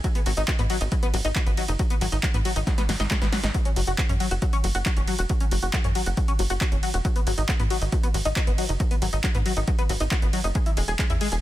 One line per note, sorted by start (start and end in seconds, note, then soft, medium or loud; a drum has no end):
0.04 0.07 F#3 medium
0.04 kick loud
0.04 closed hi-hat medium
0.04 ride medium
0.15 0.19 B3 medium
0.15 closed hi-hat medium
0.26 0.34 G#1 medium
0.26 0.30 F#3 medium
0.26 open hi-hat medium
0.26 ride medium
0.37 0.45 G#1 medium
0.37 0.41 D#4 medium
0.37 closed hi-hat medium
0.48 0.52 F#3 medium
0.48 kick loud
0.48 clap loud
0.48 closed hi-hat medium
0.48 ride medium
0.59 0.66 G#2 medium
0.59 0.62 B3 loud
0.59 closed hi-hat medium
0.70 0.76 F#3 medium
0.70 open hi-hat loud
0.70 ride medium
0.81 0.88 G#1 medium
0.81 0.83 D#4 medium
0.81 closed hi-hat medium
0.92 0.94 F#3 medium
0.92 kick loud
0.92 closed hi-hat medium
0.92 ride medium
1.03 1.07 B3 loud
1.03 closed hi-hat medium
1.14 1.21 G#1 loud
1.14 1.16 F#3 medium
1.14 open hi-hat loud
1.14 ride medium
1.25 1.32 G#1 medium
1.25 1.27 D#4 loud
1.25 closed hi-hat medium
1.36 1.40 F#3 medium
1.36 kick loud
1.36 clap loud
1.36 closed hi-hat medium
1.36 ride medium
1.47 1.54 G#1 medium
1.47 1.51 B3 medium
1.47 closed hi-hat medium
1.57 1.64 F#3 medium
1.57 open hi-hat loud
1.57 ride medium
1.68 1.76 F#1 medium
1.68 1.71 D#4 medium
1.68 closed hi-hat medium
1.79 1.82 F#3 medium
1.79 kick loud
1.79 closed hi-hat medium
1.79 ride medium
1.90 1.95 B3 medium
1.90 closed hi-hat medium
2.01 2.09 G#1 medium
2.01 2.06 F#3 medium
2.01 open hi-hat loud
2.01 ride medium
2.12 2.20 G#1 medium
2.12 2.17 D#4 medium
2.12 closed hi-hat medium
2.23 2.27 F#3 medium
2.23 kick loud
2.23 clap loud
2.23 closed hi-hat medium
2.23 ride medium
2.34 2.42 G#2 medium
2.34 2.37 B3 loud
2.34 closed hi-hat medium
2.45 2.52 F#3 medium
2.45 open hi-hat loud
2.45 ride medium
2.56 2.64 G#1 medium
2.56 2.59 D#4 medium
2.56 closed hi-hat medium
2.67 2.70 F#3 medium
2.67 kick loud
2.67 snare medium
2.67 closed hi-hat medium
2.67 ride medium
2.78 2.82 B3 loud
2.78 snare medium
2.78 closed hi-hat medium
2.89 2.96 G#1 loud
2.89 2.91 F#3 medium
2.89 snare medium
2.89 open hi-hat loud
2.89 ride medium
3.00 3.07 G#1 medium
3.00 3.02 D#4 loud
3.00 snare medium
3.00 closed hi-hat medium
3.11 3.15 F#3 medium
3.11 kick loud
3.11 snare medium
3.11 clap loud
3.11 closed hi-hat medium
3.11 ride medium
3.22 3.29 G#1 medium
3.22 3.26 B3 medium
3.22 snare medium
3.22 closed hi-hat medium
3.33 3.39 F#3 medium
3.33 snare medium
3.33 open hi-hat loud
3.33 ride medium
3.43 3.51 G#1 medium
3.43 3.46 D#4 medium
3.43 snare medium
3.43 closed hi-hat medium
3.54 3.57 F#3 medium
3.54 kick loud
3.54 closed hi-hat medium
3.54 ride medium
3.65 3.70 C#4 medium
3.65 closed hi-hat medium
3.76 3.84 F#1 medium
3.76 3.81 F#3 medium
3.76 open hi-hat loud
3.76 ride medium
3.87 3.95 F#1 medium
3.87 3.92 F#4 medium
3.87 closed hi-hat medium
3.98 4.03 F#3 medium
3.98 kick loud
3.98 clap loud
3.98 closed hi-hat medium
3.98 ride medium
4.09 4.17 F#2 medium
4.09 4.12 C#4 loud
4.09 closed hi-hat medium
4.20 4.27 F#3 medium
4.20 open hi-hat loud
4.20 ride medium
4.31 4.39 F#1 medium
4.31 4.34 F#4 medium
4.31 closed hi-hat medium
4.42 4.45 F#3 medium
4.42 kick loud
4.42 closed hi-hat medium
4.42 ride medium
4.53 4.57 C#4 loud
4.53 closed hi-hat medium
4.64 4.71 F#1 loud
4.64 4.67 F#3 medium
4.64 open hi-hat loud
4.64 ride medium
4.75 4.82 F#1 medium
4.75 4.78 F#4 loud
4.75 closed hi-hat medium
4.86 4.90 F#3 medium
4.86 kick loud
4.86 clap loud
4.86 closed hi-hat medium
4.86 ride medium
4.97 5.04 F#1 medium
4.97 5.01 C#4 medium
4.97 closed hi-hat medium
5.08 5.14 F#3 medium
5.08 open hi-hat loud
5.08 ride medium
5.19 5.26 E1 medium
5.19 5.21 F#4 medium
5.19 closed hi-hat medium
5.29 5.32 F#3 medium
5.29 kick loud
5.29 closed hi-hat medium
5.29 ride medium
5.40 5.45 C#4 medium
5.40 closed hi-hat medium
5.51 5.59 F#1 medium
5.51 5.56 F#3 medium
5.51 open hi-hat loud
5.51 ride medium
5.62 5.70 F#1 medium
5.62 5.67 F#4 medium
5.62 closed hi-hat medium
5.73 5.78 F#3 medium
5.73 kick loud
5.73 clap loud
5.73 closed hi-hat medium
5.84 5.92 F#2 medium
5.84 5.87 C#4 loud
5.84 closed hi-hat medium
5.95 6.02 F#3 medium
5.95 open hi-hat loud
5.95 ride medium
6.06 6.14 F#1 medium
6.06 6.09 F#4 medium
6.06 closed hi-hat medium
6.17 6.20 F#3 medium
6.17 kick loud
6.17 closed hi-hat medium
6.17 ride medium
6.28 6.33 C#4 loud
6.28 closed hi-hat medium
6.39 6.47 F#1 loud
6.39 6.42 F#3 medium
6.39 open hi-hat loud
6.39 ride medium
6.50 6.58 F#1 medium
6.50 6.53 F#4 loud
6.50 closed hi-hat medium
6.61 6.65 F#3 medium
6.61 kick loud
6.61 clap loud
6.61 closed hi-hat medium
6.61 ride medium
6.72 6.79 F#1 medium
6.72 6.76 C#4 medium
6.72 closed hi-hat medium
6.83 6.89 F#3 medium
6.83 open hi-hat loud
6.83 ride medium
6.94 7.01 E1 medium
6.94 6.97 F#4 medium
6.94 closed hi-hat medium
7.05 7.08 F#3 medium
7.05 kick loud
7.05 closed hi-hat medium
7.05 ride medium
7.16 7.20 B3 medium
7.16 closed hi-hat medium
7.27 7.34 G#1 medium
7.27 7.31 F#3 medium
7.27 open hi-hat loud
7.27 ride medium
7.38 7.45 G#1 medium
7.38 7.42 D#4 medium
7.38 closed hi-hat medium
7.49 7.53 F#3 medium
7.49 kick loud
7.49 clap loud
7.49 closed hi-hat medium
7.49 ride medium
7.60 7.67 G#2 medium
7.60 7.62 B3 loud
7.60 closed hi-hat medium
7.70 7.77 F#3 medium
7.70 open hi-hat loud
7.70 ride medium
7.82 7.89 G#1 medium
7.82 7.84 D#4 medium
7.82 closed hi-hat medium
7.92 7.95 F#3 medium
7.92 kick loud
7.92 closed hi-hat medium
7.92 ride medium
8.03 8.08 B3 loud
8.03 closed hi-hat medium
8.14 8.22 G#1 loud
8.14 8.17 F#3 medium
8.14 open hi-hat loud
8.14 ride medium
8.25 8.33 G#1 medium
8.25 8.28 D#4 loud
8.25 closed hi-hat medium
8.36 8.41 F#3 medium
8.36 kick loud
8.36 clap loud
8.36 closed hi-hat medium
8.36 ride medium
8.47 8.55 G#1 medium
8.47 8.52 B3 medium
8.47 closed hi-hat medium
8.58 8.65 F#3 medium
8.58 open hi-hat loud
8.58 ride medium
8.69 8.77 F#1 medium
8.69 8.72 D#4 medium
8.69 closed hi-hat medium
8.80 8.83 F#3 medium
8.80 kick loud
8.80 closed hi-hat medium
8.80 ride medium
8.91 8.95 B3 medium
8.91 closed hi-hat medium
9.02 9.09 G#1 loud
9.02 9.06 F#3 medium
9.02 open hi-hat loud
9.02 ride medium
9.13 9.20 G#1 medium
9.13 9.17 D#4 medium
9.13 closed hi-hat medium
9.24 9.28 F#3 medium
9.24 kick loud
9.24 clap loud
9.24 closed hi-hat medium
9.24 ride medium
9.35 9.42 G#2 medium
9.35 9.37 B3 loud
9.35 closed hi-hat medium
9.46 9.52 F#3 medium
9.46 open hi-hat loud
9.46 ride medium
9.57 9.64 G#1 medium
9.57 9.59 D#4 medium
9.57 closed hi-hat medium
9.68 9.70 F#3 medium
9.68 kick loud
9.68 closed hi-hat medium
9.68 ride medium
9.79 9.83 B3 loud
9.79 closed hi-hat medium
9.89 9.97 G#1 loud
9.89 9.92 F#3 medium
9.89 open hi-hat loud
9.89 ride medium
10.00 10.08 G#1 medium
10.00 10.03 D#4 loud
10.00 closed hi-hat medium
10.11 10.16 F#3 medium
10.11 kick loud
10.11 clap loud
10.11 closed hi-hat medium
10.11 ride medium
10.22 10.30 G#1 medium
10.22 10.27 B3 medium
10.22 closed hi-hat medium
10.33 10.40 F#3 medium
10.33 open hi-hat loud
10.33 ride medium
10.44 10.52 F#1 medium
10.44 10.47 D#4 medium
10.44 closed hi-hat medium
10.55 10.58 G#3 medium
10.55 kick loud
10.55 closed hi-hat medium
10.55 ride medium
10.66 10.71 E4 medium
10.66 closed hi-hat medium
10.77 10.85 E1 loud
10.77 10.81 G#3 medium
10.77 open hi-hat loud
10.77 ride medium
10.88 10.96 E1 medium
10.88 10.92 G#4 medium
10.88 closed hi-hat medium
10.99 11.03 G#3 medium
10.99 kick loud
10.99 clap loud
10.99 closed hi-hat medium
10.99 ride medium
11.10 11.17 E2 medium
11.10 11.13 E4 loud
11.10 closed hi-hat medium
11.21 11.28 G#3 medium
11.21 open hi-hat loud
11.21 ride medium
11.32 11.39 E1 medium
11.32 11.35 G#4 medium
11.32 closed hi-hat medium